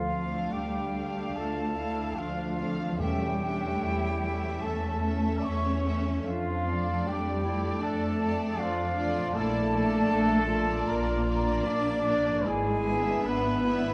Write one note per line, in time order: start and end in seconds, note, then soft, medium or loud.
0.00 0.43 D2 soft
0.00 2.96 D3 soft
0.00 0.49 F3 soft
0.00 0.15 A3 soft
0.00 2.87 A3 soft
0.00 0.49 F4 medium
0.00 3.00 F4 soft
0.00 3.57 A4 soft
0.00 0.54 F5 soft
0.12 0.92 A3 soft
0.12 0.58 C4 soft
0.12 0.93 D4 soft
0.12 0.92 F5 soft
0.52 1.26 D2 soft
0.52 1.34 G3 medium
0.52 1.36 G3 soft
0.52 1.36 G4 medium
0.52 1.37 G5 soft
0.57 1.40 D4 soft
0.94 1.76 A3 soft
0.94 1.77 D4 soft
0.94 1.76 F5 soft
1.34 2.08 D2 soft
1.34 2.19 A3 soft
1.34 2.17 A3 medium
1.34 2.18 A4 medium
1.34 2.20 A5 soft
1.39 1.77 F4 soft
1.77 2.58 A3 soft
1.77 2.58 D4 soft
1.77 2.18 E4 soft
1.77 2.56 F5 soft
2.17 2.90 D2 soft
2.17 2.99 F3 soft
2.17 3.01 F3 medium
2.17 2.62 D4 soft
2.17 3.01 F4 medium
2.17 3.00 F5 soft
2.57 3.00 A3 soft
2.57 3.02 C4 soft
2.57 3.00 D4 soft
2.57 2.99 F5 soft
2.84 6.20 E3 soft
2.88 6.11 A3 soft
2.92 6.24 E4 soft
2.97 3.72 E2 soft
2.97 4.18 E2 medium
2.97 4.63 G3 medium
2.97 3.41 A3 soft
2.97 4.60 G4 medium
2.97 6.27 C#5 soft
2.97 3.40 E5 soft
2.97 4.63 G5 medium
3.02 3.42 C#4 soft
3.02 3.43 C#4 soft
3.42 4.21 A3 soft
3.42 4.22 C#4 soft
3.42 3.83 D4 soft
3.42 4.21 E5 soft
3.81 4.53 E2 soft
3.86 4.67 E4 medium
4.22 5.02 A3 soft
4.22 5.02 C#4 soft
4.22 5.03 E5 soft
4.61 5.35 E2 medium
4.61 5.44 A3 medium
4.61 5.43 A3 medium
4.61 5.49 C#4 soft
4.61 5.38 A4 medium
4.61 5.44 A5 medium
5.03 5.82 A3 soft
5.03 5.84 C#4 soft
5.03 5.84 E5 soft
5.38 5.45 D5 soft
5.43 6.16 E2 medium
5.43 6.24 C#4 medium
5.43 6.25 C#4 medium
5.43 6.08 C#5 medium
5.43 5.98 C#6 medium
5.48 5.87 A3 soft
5.83 6.24 A3 soft
5.83 6.25 C#4 soft
5.83 6.28 C#4 soft
5.83 6.25 E5 soft
6.08 9.98 F3 soft
6.12 9.32 A3 soft
6.17 9.21 D4 soft
6.21 6.96 F2 medium
6.21 7.04 F4 medium
6.21 9.30 D5 soft
6.21 7.02 F5 medium
6.26 7.06 F3 medium
6.26 7.05 F3 medium
6.26 6.68 D4 soft
6.65 7.43 A3 soft
6.65 7.07 C4 soft
6.65 7.43 D4 soft
6.65 7.41 D5 soft
7.05 7.74 F2 medium
7.05 7.83 G3 soft
7.05 7.65 G3 medium
7.05 7.43 D4 soft
7.05 7.83 G4 medium
7.05 7.82 G5 medium
7.43 8.19 A3 soft
7.43 8.19 D4 soft
7.43 7.82 E4 medium
7.43 8.18 D5 soft
7.81 8.50 F2 medium
7.81 8.57 A3 medium
7.81 8.58 A3 medium
7.81 8.20 D4 medium
7.81 8.59 A4 medium
7.81 8.60 A5 medium
8.19 8.95 A3 soft
8.19 8.61 C4 medium
8.19 8.96 D4 soft
8.19 8.95 D5 soft
8.58 9.26 F2 medium
8.58 9.35 F3 medium
8.58 9.34 F3 medium
8.58 9.10 D4 medium
8.58 9.35 F4 medium
8.58 9.32 F5 medium
8.96 9.34 A3 soft
8.96 9.34 D4 soft
8.96 9.34 D5 soft
9.17 12.40 A#2 soft
9.22 12.31 D4 soft
9.27 12.44 F4 soft
9.31 10.02 A#1 medium
9.31 10.89 A3 medium
9.31 9.71 A#3 soft
9.31 10.06 E4 medium
9.31 10.89 A4 medium
9.31 13.21 D5 soft
9.31 9.73 D5 soft
9.31 10.89 A5 medium
9.36 9.71 D4 soft
9.72 10.48 A#3 soft
9.72 10.47 D4 soft
9.72 10.49 D5 soft
10.11 10.80 A#1 medium
10.11 10.49 D4 medium
10.47 11.27 A#3 soft
10.47 11.26 D4 soft
10.47 11.68 F4 medium
10.47 11.27 D5 medium
10.88 11.58 A#1 medium
10.88 11.65 A#3 medium
10.88 11.67 A#3 medium
10.88 11.67 A#4 medium
10.88 11.68 A#5 medium
11.27 12.04 A#3 medium
11.27 12.04 D4 medium
11.27 12.04 D5 medium
11.65 12.36 A#1 medium
11.65 12.07 A#3 medium
11.65 12.44 D4 medium
11.65 12.45 D4 medium
11.65 12.43 D5 medium
11.65 12.19 D6 medium
12.05 12.44 A#3 medium
12.05 12.47 D4 medium
12.05 12.44 D4 soft
12.05 12.45 D5 soft
12.27 13.94 G#2 medium
12.37 13.94 E4 soft
12.41 13.14 G#1 medium
12.41 13.21 G#3 medium
12.41 13.22 G#3 medium
12.41 13.94 B4 soft
12.41 13.26 G#5 medium
12.45 13.25 E4 medium
12.45 13.24 G#4 medium
12.85 13.63 B3 soft
12.85 13.63 D4 soft
12.85 13.63 E5 soft
13.22 13.94 G#1 medium
13.22 13.94 B3 medium
13.22 13.63 D4 medium
13.22 13.94 B4 medium
13.22 13.94 B5 medium
13.63 13.94 B3 medium
13.63 13.94 D4 soft
13.63 13.94 E4 medium
13.63 13.94 E5 medium
13.87 13.94 A2 soft